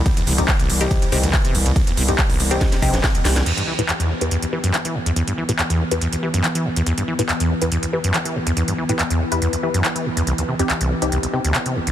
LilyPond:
<<
  \new Staff \with { instrumentName = "Synth stab" } { \time 4/4 \key e \minor \tempo 4 = 141 r8. <c' ees' g'>16 r8. <c' ees' g'>8. <c' ees' g'>16 r4 r16 | r8. <c' ees' g'>16 r8. <c' ees' g'>8. <c' ees' g'>16 r8. <c' ees' g'>16 r16 | r8. <e' g' b'>16 r8. <e' g' b'>8. <e' g' b'>16 r4 r16 | r8. <e' g' b'>16 r8. <e' g' b'>8. <e' g' b'>16 r4 r16 |
r8. <e' g' b'>16 r8. <e' g' b'>8. <e' g' b'>16 r4 r16 | r8. <e' g' b'>16 r8. <e' g' b'>8. <e' g' b'>16 r4 r16 | r8. <c' ees' g'>16 r8. <c' ees' g'>8. <c' ees' g'>16 r4 r16 | }
  \new Staff \with { instrumentName = "Synth drone" } { \clef bass \time 4/4 \key e \minor <e b>1~ | <e b>1 | <e b>1~ | <e b>1~ |
<e b>1~ | <e b>1~ | <e b>1 | }
  \new Staff \with { instrumentName = "Acid bass" } { \clef bass \time 4/4 \key e \minor c,16 ees,16 c16 f,16 c,16 c,16 ais,,16 c,16 c,16 c,16 c16 d,16 c16 c16 ais,,16 c,16 | c,16 ees,16 c16 f,16 c,16 c,16 ais,,16 c,16 c,16 c,16 c16 c,16 c16 c,16 c,16 c,16 | e,16 g,16 e16 a,16 e,16 e,16 dis,16 e,16 e,16 e,16 e16 fis,16 e16 e16 dis,16 e,16 | e,16 g,16 e16 a,16 e,16 e,16 dis,16 e,16 e,16 e,16 e16 fis,16 e16 e16 dis,16 e,16 |
e,16 g,16 e16 a,16 e,16 e,16 dis,16 e,16 e,16 e,16 e16 fis,16 e16 e16 dis,16 e,16 | e,16 g,16 e16 a,16 e,16 e,16 dis,16 e,16 e,16 e,16 e16 fis,16 e16 e16 dis,16 e,16 | c,16 ees,16 c16 f,16 c,16 c,16 ais,,16 c,16 c,16 c,16 c16 d,16 c16 c16 ais,,16 c,16 | }
  \new Staff \with { instrumentName = "FM bass" } { \clef bass \time 4/4 \key e \minor r8 c,8 r8 c,8 r8 c,8 r8 c,8 | r8 c,8 r8 c,8 r8 ais,,8 r8 c,8 | r1 | r1 |
r1 | r1 | r1 | }
  \new DrumStaff \with { instrumentName = "Drums" } \drummode { \time 4/4 <hh bd cymr>16 <hh cymr>16 <hho cymr>16 <hh cymr>16 <hc hh bd>16 <hh cymr>16 <hho cymr>16 <hh cymr>16 <hh bd cymr>16 <hh cymr>16 <hho cymr>16 <hh cymr>16 <hc hh bd cymr>16 <hh cymr>16 <hho cymr>16 <hh cymr>16 | <hh bd cymr>16 <hh cymr>16 <hho cymr>16 <hh cymr>16 <hc hh bd cymr>16 <hho cymr>16 <hho cymr>16 <hh cymr>16 <hh bd cymr sn>16 <hh cymr sn>16 <hho bd cymr>16 <hh cymr sn>16 <hc hh bd cymr sn>16 <hh cymr>16 <hho cymr sn>16 <hh cymr sn>16 | <cymc hh>16 hh8 hh16 <hc hh>16 hh8 hh16 hh16 hh8 hh16 <hc hh>16 hh8 hh16 | hh16 hh8 hh16 <hc hh>16 hh8 hh16 hh16 hh8 hh16 <hc hh>16 hh8 hh16 |
hh16 hh8 hh16 <hc hh>16 hh8 hh16 hh16 hh8 hh16 <hc hh>16 hh8 hh16 | hh16 hh8 hh16 <hc hh>16 hh8 hh16 hh16 hh8 hh16 <hc hh>16 hh8 hh16 | hh16 hh8 hh16 <hc hh>16 hh8 hh16 hh16 hh8 hh16 <hc hh>16 hh8 hh16 | }
>>